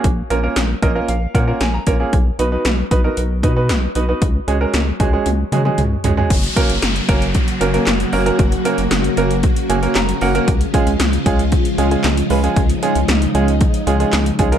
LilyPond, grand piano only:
\new Staff \with { instrumentName = "Grand piano" } { \time 4/4 \key fis \major \tempo 4 = 115 << { r4. dis''8 eis''8 fis''8 gis''16 ais''8. | r1 | r1 | r1 |
r2. ais''8 fis''8 | r1 | r1 | } \\ { r8 <ais cis' eis' ais'>16 <ais cis' eis' ais'>16 r8 <ais cis' eis' ais'>16 <ais cis' eis' ais'>16 r8 <ais cis' eis' ais'>16 <ais cis' eis' ais'>16 r8 <ais cis' eis' ais'>16 <ais cis' eis' gis'>16 | r8 <b dis' fis' b'>16 <b dis' fis' b'>16 r8 <b dis' fis' b'>16 <b dis' fis' ais'>16 r8 <b dis' fis' b'>16 <b dis' fis' b'>16 r8 <b dis' fis' b'>16 <b dis' fis' b'>16 | r8 <gis cis' fis' gis'>16 <gis cis' fis' ais'>16 r8 <gis cis' fis' gis'>16 <gis cis' fis' gis'>16 r8 <gis cis' fis' gis'>16 <gis cis' fis' gis'>16 r8 <gis cis' fis' gis'>16 <gis cis' fis' gis'>16 | r8 <ais cis' fis' ais'>16 r8. <ais cis' fis' ais'>16 r8. <ais cis' fis' ais'>16 <ais cis' fis' ais'>16 r8 <ais cis' fis' ais'>16 <ais cis' fis' ais'>16 |
r8 <ais cis' fis' ais'>16 r8. <ais cis' fis' ais'>16 r8. <ais cis' fis' gis'>16 <ais cis' fis' ais'>16 r8 <ais cis' fis' ais'>16 <ais cis' fis' ais'>16 | r8 <gis cis' eis' gis'>16 r8. <gis cis' eis' gis'>16 r8. <gis cis' eis' gis'>16 <gis cis' eis' gis'>16 r8 <gis cis' eis' b'>16 <gis cis' eis' gis'>16 | r8 <gis cis' eis' gis'>16 r8. <gis cis' eis' gis'>16 r8. <gis cis' eis' gis'>16 <gis cis' eis' gis'>16 r8 <gis cis' eis' gis'>16 <gis cis' eis' ais'>16 | } >> }